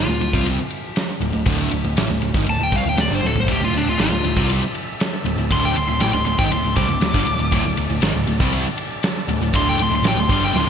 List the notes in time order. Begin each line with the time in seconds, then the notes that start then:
Already playing: F4
0.08 D1 D2 A2
0.20 D1 D2 A2, ride
0.33 C2 C3 G3 C4, kick
0.46 ride
0.70 ride
0.96 snare, ride
1.20 D1 D2 A2, ride
1.33 D1 D2 A2
1.46 D1 D2 A2 D3, kick, ride
1.71 D1 D2 A2, ride
1.84 D1 D2 A2
1.97 A1 A2 E3, snare, ride
2.09 D1 D2 A2
2.21 D1 D2 A2, ride
2.34 G#1 G#2 D#3, kick
2.46 D1 D2 A2 A5, ride
2.59 D1 D2 A2 G5
2.72 C2 C3 G3, kick, ride
2.76 F5
2.85 D1 D2 A2 G5
2.97 D1 D2 A2 D5, snare, ride
3.09 G1 G2 D3
3.15 C5
3.22 D1 D2 A2, snare
3.27 A4
3.35 D1 D2 A2, floor tom
3.40 C5
3.47 D1 D2 A2 D4 A4 E5, kick, ride
3.51 G4
3.60 D1 D2 A2 F4
3.73 D1 D2 A2, ride
3.77 D4
3.86 D1 D2 A2 F4
3.97 G#1 G#2 D#3 F4, snare, ride
4.11 D1 D2 A2
4.24 D1 D2 A2, ride
4.36 C2 C3 G3 C4, kick
4.50 ride
4.75 ride
5.00 snare, ride
5.24 D1 D2 A2, ride
5.37 D1 D2 A2
5.49 D1 D2 A2 D3 C6, kick, ride
5.65 G5
5.75 D1 D2 A2 C6, ride
5.88 D1 D2 A2 C6
6.00 A1 A2 E3 G5, snare, ride
6.13 D1 D2 A2 C6
6.25 D1 D2 A2 C6, ride
6.38 G#1 G#2 D#3 G5, kick
6.51 D1 D2 A2 C6, ride
6.63 D1 D2 A2
6.76 C2 C3 G3 D6, kick, ride
6.88 D1 D2 A2
7.01 D1 D2 A2, snare, ride
7.13 G1 G2 D3, kick
7.27 D1 D2 A2, ride
7.38 D1 D2 A2
7.51 D1 D2 A2 D5, kick, ride
7.63 D1 D2 A2
7.76 D1 D2 A2, ride
7.89 D1 D2 A2
8.01 G#1 G#2 D#3, snare, ride
8.14 D1 D2 A2
8.27 D1 D2 A2, ride
8.39 C2 C3 G3 C4, kick
8.53 ride
8.78 ride
9.03 snare, ride
9.28 D1 D2 A2, ride
9.40 D1 D2 A2
9.53 D1 D2 A2 D3 C6, kick, ride
9.69 G5
9.77 D1 D2 A2, ride
9.82 C6
9.90 D1 D2 A2
9.95 C6
10.02 A1 A2 E3, snare, ride
10.07 G5
10.15 D1 D2 A2
10.20 C6
10.29 G1 G2 D3 G3 C6, kick, ride
10.44 G5
10.53 D1 D2 A2 C6, snare
10.66 C3